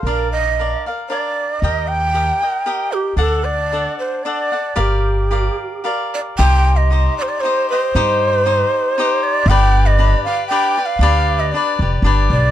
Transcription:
X:1
M:3/4
L:1/16
Q:"Swing" 1/4=116
K:Gm
V:1 name="Shakuhachi"
B2 e4 z2 d4 | e2 g8 G2 | A2 d4 c2 d4 | G8- G2 d2 |
[K:Cm] g3 e3 d/2 c/2 d c2 c2- | c8- c2 d2 | g3 e3 f2 g3 f- | f3 e d4 z2 d2 |]
V:2 name="Cavaquinho"
[DBdf]4 [DBdf]2 [Bdf]2 [DBdf]4 | [GBeg]4 [GBeg]2 [Beg]2 [GBeg]4 | [DAd^f]4 [DAdf]4 [DAdf]2 [Adf]2 | [GBdf]4 [GBdf]4 [GBdf]4 |
[K:Cm] [EGce]4 [EGce]4 [EGce]2 [Gce]2 | [EGce]4 [EGce]4 [EGce]4 | [DG=Bd]4 [DGBd]2 [GBd]2 [DGBd]2 [GBd]2 | [DG=Bd]4 [DGBd]2 [GBd]2 [DGBd]4 |]
V:3 name="Upright bass" clef=bass
B,,,8 z4 | E,,8 z4 | D,,8 z4 | G,,,8 z4 |
[K:Cm] C,,8 z4 | G,,8 z4 | G,,,8 z4 | D,,6 F,,,2 G,,,2 =B,,,2 |]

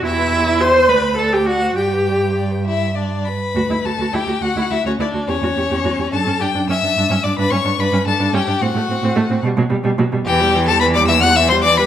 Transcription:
X:1
M:6/8
L:1/16
Q:3/8=72
K:G
V:1 name="Violin"
G B G B G B d c d c d c | d B d B d B e2 d2 b2- | [K:D] b2 a2 g2 f2 e c d2 | c6 a2 g2 e'2- |
e'2 d' b c'2 b2 a2 g2 | f6 z6 | [K:Em] g3 a b d' e' f' e' c' d' b |]
V:2 name="Violin"
e4 c'2 b2 a g f2 | g6 E2 D2 B2- | [K:D] B2 A2 G2 F2 E C D2 | C6 A2 G2 e2- |
e2 d B c2 B2 A2 G2 | F6 z6 | [K:Em] G3 A B d e f e c d B |]
V:3 name="Viola"
E4 c2 B2 A G F2 | G6 z6 | [K:D] F E F F E F F E F F E F | G F G G F G D C D D C D |
D C D D C D D C D D C D | =C A, C C A, C G, F, G, G, F, G, | [K:Em] E, G, E, G, E, G, E, G, E, G, E, G, |]
V:4 name="Cello" clef=bass
E,,6 D,,6 | G,,8- G,,3 z | [K:D] D,, D,, D,, D,, D,, D,, D,, D,, D,, D,, D,, D,, | E,, E,, E,, E,, E,, E,, F,, F,, F,, F,, F,, F,, |
G,, G,, G,, G,, G,, G,, G,, G,, G,, G,, G,, G,, | A,, A,, A,, A,, A,, A,, B,, B,, B,, B,, B,, B,, | [K:Em] E,,12 |]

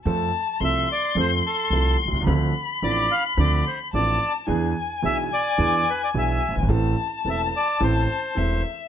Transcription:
X:1
M:4/4
L:1/16
Q:1/4=108
K:Am
V:1 name="Violin"
a4 c'12 | b12 a4 | ^g16 | a12 e4 |]
V:2 name="Bandoneon"
z4 e2 d2 c2 A4 z2 | z4 d2 f2 d2 c2 d3 z | z4 e2 d4 B d e3 z | z4 e2 d2 c6 z2 |]
V:3 name="Grand piano" clef=bass
[F,,F,A,CA]2 z2 [C,,C,F,A,CA]2 z2 [F,,F,A,CA]2 z2 [C,,C,F,A,CA]2 z/2 B,,,/2 C,,/2 ^C,,/2 | [D,,D,F,CDA]2 z2 [A,,,A,,F,CDA]2 z2 [D,,D,F,CDA]2 z2 [A,,,A,,F,CDA]2 z2 | [E,,E,B,D^G]2 z2 [B,,,B,,E,B,DG]2 z2 [E,,E,B,DG]2 z2 [B,,,B,,E,B,DG]2 z/2 ^F,,,/2 =G,,,/2 ^G,,,/2 | [A,,,A,,E,A,CA]2 z2 [E,,,E,,E,A,CA]2 z2 [A,,,A,,E,A,CA]2 z2 [E,,,E,,E,A,CA]2 z2 |]
V:4 name="Upright bass" clef=bass
F,,3/2 z2 z/2 C,,3/2 z2 z/2 F,,3/2 z2 z/2 C,,3/2 z B,,,/2 C,,/2 ^C,,/2 | D,,3/2 z2 z/2 A,,,3/2 z2 z/2 D,,3/2 z2 z/2 A,,,3/2 z2 z/2 | E,,3/2 z2 z/2 B,,,3/2 z2 z/2 E,,3/2 z2 z/2 B,,,3/2 z ^F,,,/2 G,,,/2 ^G,,,/2 | A,,,3/2 z2 z/2 E,,,3/2 z2 z/2 A,,,3/2 z2 z/2 E,,,3/2 z2 z/2 |]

